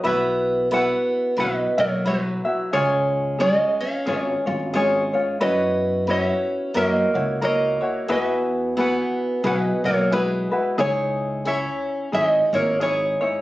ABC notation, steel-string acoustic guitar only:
X:1
M:4/4
L:1/8
Q:"Swing" 1/4=89
K:Elyd
V:1 name="Steel-string acoustic guitar"
B,2 B,2 B, A, F,2 | G,2 G, C G,2 G,2 | B,2 C2 A,2 A,2 | B,2 B,2 B, A, G,2 |
G,2 C2 G, A, G,2 |]